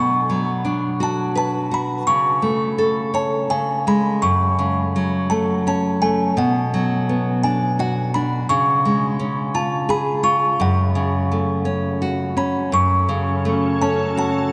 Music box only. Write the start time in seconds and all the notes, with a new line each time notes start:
Already playing: C#6
1.03 A5
1.38 A5
1.74 B5
2.07 C#6
3.15 A5
3.50 G#5
3.88 B5
4.22 C#6
5.30 A5
5.68 A5
6.02 G#5
6.38 F#5
7.43 G#5
7.80 F#5
8.14 B5
8.49 C#6
9.55 A5
9.90 B5
10.24 C#6
10.61 F#5
12.38 B5
12.74 C#6
13.82 A5
14.19 A5